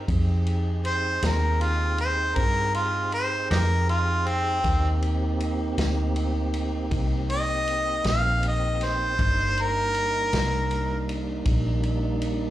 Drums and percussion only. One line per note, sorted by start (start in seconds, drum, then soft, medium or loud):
0.08 kick loud
0.08 ride medium
0.47 ride medium
0.85 ride medium
1.23 snare loud
1.23 ride medium
1.61 ride medium
1.98 ride medium
2.36 kick loud
2.36 ride medium
2.74 ride medium
3.12 ride medium
3.51 snare loud
3.51 ride medium
3.89 ride medium
4.27 ride medium
4.64 kick loud
4.64 ride medium
5.02 ride medium
5.40 ride medium
5.78 snare loud
5.78 ride medium
6.16 ride medium
6.54 ride medium
6.91 kick loud
6.91 ride medium
7.30 ride medium
7.67 ride medium
8.04 snare loud
8.04 ride medium
8.43 ride medium
8.81 snare soft
8.81 ride medium
9.19 kick loud
9.19 ride medium
9.57 ride medium
9.94 ride medium
10.33 snare loud
10.33 ride medium
10.71 ride medium
11.09 ride medium
11.46 kick loud
11.46 ride medium
11.83 ride medium
12.22 ride medium